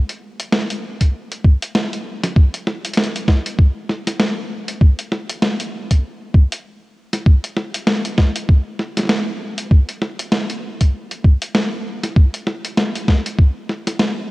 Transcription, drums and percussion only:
0.09 closed hi-hat medium
0.40 closed hi-hat medium
0.52 snare loud
0.70 closed hi-hat medium
1.01 kick medium
1.01 closed hi-hat medium
1.32 closed hi-hat soft
1.44 kick loud
1.62 closed hi-hat medium
1.75 snare loud
1.93 closed hi-hat soft
2.24 snare medium
2.24 closed hi-hat medium
2.36 kick loud
2.54 closed hi-hat medium
2.67 snare medium
2.85 closed hi-hat medium
2.94 snare loud
2.94 closed hi-hat medium
3.04 closed hi-hat soft
3.16 closed hi-hat medium
3.28 kick medium
3.28 snare medium
3.46 closed hi-hat medium
3.59 kick loud
3.90 snare soft
4.07 snare medium
4.07 closed hi-hat medium
4.20 snare loud
4.68 closed hi-hat medium
4.81 kick loud
4.99 closed hi-hat medium
5.12 snare medium
5.29 closed hi-hat medium
5.42 snare loud
5.60 closed hi-hat medium
5.91 kick medium
5.91 closed hi-hat medium
6.34 kick loud
6.52 closed hi-hat medium
7.13 snare medium
7.13 closed hi-hat medium
7.26 kick loud
7.44 closed hi-hat medium
7.57 snare medium
7.74 closed hi-hat medium
7.87 snare loud
8.05 closed hi-hat medium
8.18 kick medium
8.18 snare medium
8.36 closed hi-hat medium
8.49 kick loud
8.79 snare soft
8.97 snare soft
8.97 closed hi-hat medium
8.99 snare soft
9.03 snare soft
9.05 snare soft
9.07 snare soft
9.09 snare loud
9.58 closed hi-hat medium
9.71 kick loud
9.89 closed hi-hat medium
10.02 snare medium
10.19 closed hi-hat medium
10.32 snare loud
10.50 closed hi-hat medium
10.81 kick medium
10.81 closed hi-hat medium
11.11 closed hi-hat soft
11.24 kick loud
11.42 closed hi-hat medium
11.55 snare loud
12.03 snare soft
12.03 closed hi-hat medium
12.16 kick loud
12.34 closed hi-hat medium
12.47 snare medium
12.64 closed hi-hat medium
12.77 snare loud
12.95 closed hi-hat medium
13.08 kick medium
13.08 snare medium
13.26 closed hi-hat medium
13.38 kick loud
13.69 snare soft
13.87 snare soft
13.87 closed hi-hat medium
13.99 snare loud

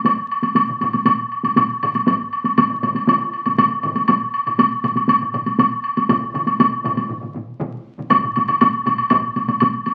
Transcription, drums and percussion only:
0.05 taiko medium
0.05 taiko high medium
0.05 high woodblock soft
0.31 high woodblock soft
0.42 taiko high soft
0.42 high woodblock soft
0.55 taiko low-mid medium
0.55 taiko high medium
0.55 high woodblock soft
0.70 taiko low-mid medium
0.81 taiko low-mid medium
0.81 taiko high soft
0.81 high woodblock soft
0.93 taiko high soft
0.93 high woodblock soft
1.05 taiko low-mid medium
1.05 taiko high medium
1.05 high woodblock soft
1.32 high woodblock soft
1.43 taiko low-mid medium
1.43 taiko high soft
1.43 high woodblock soft
1.56 taiko low-mid medium
1.56 taiko high medium
1.56 high woodblock soft
1.83 taiko low-mid medium
1.83 high woodblock soft
1.95 taiko high soft
1.95 high woodblock soft
2.07 taiko medium
2.07 taiko high medium
2.07 high woodblock soft
2.33 high woodblock soft
2.44 taiko high soft
2.44 high woodblock soft
2.58 taiko mid medium
2.58 taiko high medium
2.58 high woodblock medium
2.70 taiko mid medium
2.83 taiko mid medium
2.83 taiko high soft
2.83 high woodblock soft
2.95 taiko high soft
2.95 high woodblock soft
3.07 taiko mid medium
3.07 taiko high medium
3.07 high woodblock soft
3.33 high woodblock soft
3.45 taiko mid medium
3.45 taiko high soft
3.45 high woodblock soft
3.58 taiko mid medium
3.58 taiko high medium
3.58 high woodblock medium
3.83 taiko mid medium
3.83 high woodblock soft
3.96 taiko high soft
3.96 high woodblock soft
4.08 taiko medium
4.08 taiko low-mid medium
4.08 taiko high medium
4.08 high woodblock soft
4.34 high woodblock soft
4.47 taiko low-mid medium
4.47 high woodblock soft
4.58 taiko low-mid medium
4.58 taiko high medium
4.58 high woodblock medium
4.84 taiko low-mid medium
4.84 taiko high soft
4.84 high woodblock soft
4.96 taiko high medium
4.96 high woodblock soft
5.08 taiko low-mid medium
5.08 taiko high medium
5.08 high woodblock medium
5.22 taiko low-mid medium
5.34 taiko low-mid medium
5.34 high woodblock soft
5.46 taiko high soft
5.46 high woodblock soft
5.59 taiko low-mid medium
5.59 taiko high medium
5.59 high woodblock soft
5.84 high woodblock soft
5.97 taiko high medium
5.97 high woodblock soft
6.09 taiko medium
6.09 taiko low-mid medium
6.09 taiko mid medium
6.09 taiko high medium
6.09 high woodblock soft
6.34 taiko low-mid medium
6.34 taiko mid medium
6.34 high woodblock soft
6.47 taiko high medium
6.47 high woodblock soft
6.59 taiko low-mid medium
6.59 taiko mid medium
6.59 taiko high medium
6.59 high woodblock soft
6.84 taiko low-mid medium
6.84 taiko mid medium
6.84 taiko high soft
6.84 high woodblock soft
6.97 taiko high medium
6.97 high woodblock soft
7.09 taiko low-mid medium
7.09 taiko mid medium
7.21 taiko low-mid medium
7.21 taiko mid medium
7.34 taiko low-mid medium
7.34 taiko mid medium
7.60 taiko low-mid medium
7.60 taiko mid medium
7.98 taiko low-mid medium
7.98 taiko mid medium
8.10 taiko loud
8.10 taiko low-mid medium
8.10 taiko high medium
8.10 high woodblock medium
8.24 taiko low-mid medium
8.24 taiko high soft
8.36 taiko low-mid medium
8.36 taiko high medium
8.36 high woodblock soft
8.48 taiko low-mid medium
8.48 taiko high soft
8.48 high woodblock soft
8.61 taiko low-mid medium
8.61 taiko high medium
8.61 high woodblock medium
8.74 taiko high soft
8.86 taiko low-mid medium
8.86 taiko high medium
8.86 high woodblock soft
8.98 taiko high soft
8.98 high woodblock soft
9.10 taiko loud
9.10 taiko low-mid loud
9.10 taiko high medium
9.10 high woodblock medium
9.36 taiko low-mid medium
9.36 taiko high soft
9.36 high woodblock soft
9.48 taiko low-mid medium
9.48 taiko high soft
9.48 high woodblock soft
9.60 taiko low-mid medium
9.60 taiko high medium
9.60 high woodblock medium
9.74 taiko high soft
9.86 taiko high soft
9.86 high woodblock soft

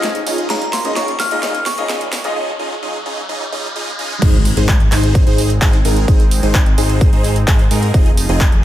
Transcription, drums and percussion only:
0.03 snare medium
0.03 closed hi-hat medium
0.15 closed hi-hat soft
0.27 open hi-hat loud
0.38 closed hi-hat soft
0.50 snare medium
0.50 closed hi-hat medium
0.62 closed hi-hat soft
0.73 snare medium
0.73 open hi-hat loud
0.85 closed hi-hat soft
0.96 snare medium
0.96 closed hi-hat medium
1.08 closed hi-hat soft
1.20 snare medium
1.20 open hi-hat loud
1.31 closed hi-hat soft
1.43 snare medium
1.43 closed hi-hat medium
1.55 closed hi-hat soft
1.66 snare medium
1.66 open hi-hat loud
1.78 closed hi-hat soft
1.89 snare medium
1.89 closed hi-hat medium
2.01 closed hi-hat soft
2.13 snare medium
2.13 open hi-hat loud
2.24 closed hi-hat soft
4.22 kick loud
4.22 closed hi-hat medium
4.22 crash loud
4.34 closed hi-hat soft
4.45 open hi-hat loud
4.57 closed hi-hat soft
4.69 kick loud
4.69 clap loud
4.69 closed hi-hat medium
4.80 closed hi-hat soft
4.92 clap medium
4.92 open hi-hat loud
5.04 closed hi-hat soft
5.15 kick loud
5.15 closed hi-hat medium
5.27 closed hi-hat soft
5.38 open hi-hat loud
5.50 closed hi-hat soft
5.62 kick loud
5.62 clap loud
5.62 closed hi-hat medium
5.73 closed hi-hat soft
5.85 open hi-hat loud
5.97 closed hi-hat soft
6.08 kick loud
6.08 closed hi-hat medium
6.20 closed hi-hat soft
6.31 open hi-hat loud
6.43 closed hi-hat soft
6.55 kick loud
6.55 clap loud
6.55 closed hi-hat medium
6.66 closed hi-hat soft
6.78 open hi-hat loud
6.90 closed hi-hat soft
7.01 kick loud
7.01 closed hi-hat medium
7.13 closed hi-hat soft
7.24 open hi-hat loud
7.36 closed hi-hat soft
7.48 kick loud
7.48 clap loud
7.48 closed hi-hat medium
7.59 closed hi-hat soft
7.71 open hi-hat loud
7.83 closed hi-hat soft
7.94 kick loud
7.94 closed hi-hat medium
8.06 closed hi-hat soft
8.17 open hi-hat loud
8.29 closed hi-hat soft
8.41 kick loud
8.41 clap loud
8.41 closed hi-hat medium
8.52 closed hi-hat soft

